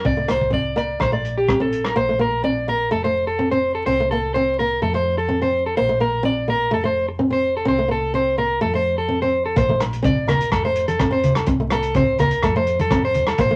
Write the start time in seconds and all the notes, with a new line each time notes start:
0.05 C2 C4 D5, kick
0.17 A3
0.28 C2 A#3 C5, cross-stick, closed hi-hat, low agogo
0.41 kick
0.50 C4 D5, kick
0.76 A#3 D5, closed hi-hat, low agogo
1.00 A#1 A3 C5, kick, cross-stick, low agogo
1.12 A3 D5
1.25 closed hi-hat
1.38 G4
1.48 C4, kick, cross-stick, low agogo
1.60 C4 A4
1.73 closed hi-hat
1.84 A#4, cross-stick, low agogo
1.96 A#1 A#3 C5
2.09 A3
2.19 A#3 A#4
2.44 C4 D5
2.68 A#3 A#4
2.91 F1 A3 A4
3.04 A3 C5
3.27 A4
3.39 C4
3.51 C4 C5
3.75 A4
3.86 C2 C4 C5
4.00 A3
4.11 A#3 A4
4.34 C4 C5
4.59 A#3 A#4
4.82 F2 A3 A4
4.94 A3 C5
5.18 A4
5.29 C4
5.42 C4 C5
5.66 A4
5.77 A#1 A#3 C5
5.89 A3
6.00 A#3 A#4
6.23 C4 D5
6.48 A#3 A#4
6.71 F1 A3 A4
6.84 A3 C5
7.09 muted clean electric guitar stroke
7.19 C4
7.30 C4 C5
7.57 A4
7.65 C2 C4 C5
7.78 A3
7.88 A#3 A4
8.14 C4 C5
8.38 A#3 A#4
8.61 F2 A3 A4
8.74 A3 C5
8.98 A4
9.08 C4
9.22 C4 C5
9.46 A4
9.56 A#1 A#3 C5, kick, closed hi-hat
9.69 A3, high conga
9.80 A#3, cross-stick, closed hi-hat, low agogo
9.93 closed hi-hat
10.03 C4 D5, kick, closed hi-hat, low conga
10.27 A#3 A#4, cross-stick, closed hi-hat, low conga, low agogo
10.41 closed hi-hat
10.52 F1 A3 A4, kick, cross-stick, closed hi-hat, low agogo
10.65 A3 C5
10.76 closed hi-hat
10.88 A4, closed hi-hat, high conga
10.99 C4, kick, cross-stick, closed hi-hat, low agogo
11.11 C4 C5
11.24 closed hi-hat, low conga
11.35 A4, cross-stick, closed hi-hat, low agogo
11.46 C2 C4, muted clean electric guitar stroke, kick, closed hi-hat
11.60 A3
11.70 A#3 A4, cross-stick, closed hi-hat, low agogo
11.83 closed hi-hat
11.94 C4 C5, kick, closed hi-hat, low conga
12.19 A#3 A#4, closed hi-hat, low conga, low agogo
12.31 closed hi-hat
12.43 F2 A3 A4, kick, cross-stick, closed hi-hat, low agogo
12.56 A3 C5
12.67 closed hi-hat
12.79 A4, closed hi-hat, high conga
12.91 C4, kick, cross-stick, closed hi-hat, low agogo
13.05 C5
13.14 closed hi-hat, low conga
13.27 A4, cross-stick, closed hi-hat, low agogo
13.38 A#1 A#3 C5, kick, closed hi-hat
13.51 A3, high conga